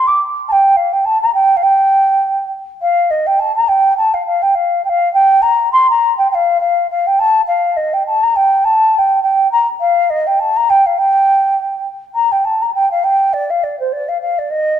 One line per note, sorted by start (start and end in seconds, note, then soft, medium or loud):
0.07 0.19 D6 loud
0.48 0.78 G5 loud
0.48 0.53 A5 loud
0.76 0.94 F5 medium
0.93 1.07 G5 medium
1.05 1.21 A5 loud
1.21 1.33 A#5 loud
1.34 1.58 G5 loud
1.56 1.64 F5 medium
1.63 2.51 G5 loud
2.82 3.12 F5 loud
3.10 3.28 D#5 medium
3.26 3.41 G5 medium
3.39 3.55 A5 loud
3.55 3.70 A#5 loud
3.68 3.96 G5 loud
3.97 4.15 A5 loud
4.14 4.25 F5 medium
4.26 4.44 F5 loud
4.42 4.56 G5 medium
4.55 4.84 F5 loud
4.84 4.90 G5 loud
4.89 5.11 F5 loud
5.13 5.43 G5 loud
5.42 5.71 A#5 loud
5.72 5.87 C6 loud
5.90 6.16 A#5 loud
6.18 6.29 G5 medium
6.31 6.58 F5 loud
6.31 6.35 G5 loud
6.60 6.87 F5 loud
6.90 7.08 F5 medium
7.07 7.21 G5 loud
7.19 7.41 A5 loud
7.47 7.78 F5 loud
7.76 7.95 D#5 medium
7.93 8.06 G5 medium
8.06 8.24 A5 loud
8.23 8.37 A#5 loud
8.36 8.66 G5 loud
8.64 8.94 A5 loud
8.94 8.99 A5 medium
8.98 9.22 G5 loud
9.23 9.50 G5 loud
9.51 9.67 A#5 loud
9.80 10.11 F5 loud
10.10 10.28 D#5 loud
10.27 10.41 G5 medium
10.39 10.58 A5 loud
10.56 10.71 A#5 loud
10.69 10.87 G5 loud
10.86 11.00 F5 medium
10.98 11.86 G5 loud
12.15 12.33 A#5 loud
12.32 12.46 G5 medium
12.45 12.63 A5 medium
12.62 12.73 A#5 medium
12.74 12.89 G5 loud
12.91 13.05 F5 medium
13.04 13.35 G5 medium
13.33 13.51 D5 loud
13.50 13.65 F5 medium
13.63 13.79 D5 medium
13.79 13.94 C5 medium
13.92 14.10 D5 medium
14.08 14.20 F5 medium
14.21 14.40 F5 medium
14.38 14.52 D5 medium
14.50 14.80 D#5 loud